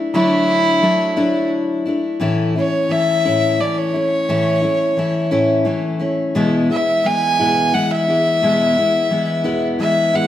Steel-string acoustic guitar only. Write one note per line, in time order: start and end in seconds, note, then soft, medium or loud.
0.00 0.13 A3 soft
0.00 0.14 D4 medium
0.00 0.14 E4 medium
0.14 0.83 D3 medium
0.14 0.81 F#3 medium
0.14 0.82 A3 medium
0.14 0.82 D4 medium
0.14 0.83 E4 loud
0.82 1.16 F#3 medium
0.82 1.16 A3 medium
0.82 1.16 D4 medium
0.82 1.15 E4 medium
1.16 1.87 D3 medium
1.16 1.87 F#3 medium
1.16 1.87 A3 medium
1.16 1.86 D4 medium
1.16 1.84 E4 medium
1.85 2.20 A3 medium
1.85 2.21 D4 medium
1.85 2.20 E4 medium
2.20 2.55 A2 medium
2.20 2.55 E3 medium
2.20 2.56 A3 medium
2.20 2.55 C#4 medium
2.20 2.54 E4 medium
2.55 2.89 A3 soft
2.55 2.89 C#4 soft
2.55 2.90 E4 soft
2.89 3.24 E3 medium
2.89 3.24 A3 medium
2.89 3.24 C#4 medium
2.89 3.24 E4 medium
3.25 3.60 A2 medium
3.25 3.58 E3 medium
3.25 3.58 A3 medium
3.25 3.59 C#4 medium
3.25 3.60 E4 medium
3.59 3.94 E3 medium
3.59 3.94 A3 medium
3.59 3.94 C#4 medium
3.59 3.92 E4 medium
3.94 4.28 A3 soft
3.94 4.28 C#4 soft
3.94 4.28 E4 medium
4.29 4.63 A2 medium
4.29 4.63 E3 medium
4.29 4.63 A3 medium
4.29 4.62 C#4 medium
4.29 4.61 E4 medium
4.62 4.97 A3 soft
4.62 4.97 C#4 soft
4.62 4.97 E4 medium
4.97 5.31 E3 medium
4.97 5.31 A3 medium
4.97 5.30 C#4 medium
4.97 5.30 E4 medium
5.31 5.67 A2 medium
5.31 5.64 E3 medium
5.31 5.65 A3 medium
5.31 5.65 C#4 medium
5.31 5.66 E4 medium
5.65 6.00 E3 medium
5.65 6.00 A3 medium
5.65 5.99 C#4 medium
5.65 5.98 E4 medium
5.99 6.35 A3 medium
5.99 6.35 C#4 medium
5.99 6.35 E4 medium
6.35 6.70 E2 medium
6.35 6.70 B2 medium
6.35 6.70 E3 medium
6.35 6.69 G#3 medium
6.35 6.69 B3 medium
6.35 6.68 E4 medium
6.70 7.03 E3 soft
6.70 7.04 G#3 soft
6.70 7.04 B3 soft
6.70 7.04 E4 soft
7.04 7.39 E3 medium
7.04 7.39 G#3 medium
7.04 7.38 B3 medium
7.04 7.38 E4 medium
7.39 7.74 E2 medium
7.39 7.74 B2 medium
7.39 7.72 E3 medium
7.39 7.73 G#3 medium
7.39 7.74 B3 medium
7.39 7.73 E4 medium
7.73 8.08 E3 medium
7.73 8.08 G#3 medium
7.73 8.08 B3 medium
7.73 8.07 E4 medium
8.08 8.42 E3 soft
8.08 8.42 G#3 medium
8.08 8.43 B3 medium
8.08 8.42 E4 medium
8.42 8.77 E2 medium
8.42 8.77 B2 medium
8.42 8.77 E3 medium
8.42 8.77 G#3 medium
8.42 8.76 B3 medium
8.42 8.75 E4 medium
8.77 9.09 E3 soft
8.77 9.10 G#3 soft
8.77 9.11 B3 soft
8.77 9.11 E4 medium
9.10 9.44 E3 medium
9.10 9.44 G#3 medium
9.10 9.43 B3 medium
9.10 9.43 E4 medium
9.44 9.80 E2 medium
9.44 9.80 B2 medium
9.44 9.78 E3 medium
9.44 9.79 G#3 medium
9.44 9.79 B3 medium
9.44 9.79 E4 medium
9.79 10.14 E3 medium
9.79 10.14 G#3 medium
9.79 10.13 B3 medium
9.79 10.12 E4 medium
10.14 10.27 E3 soft
10.14 10.27 G#3 medium
10.14 10.27 B3 medium
10.14 10.27 E4 medium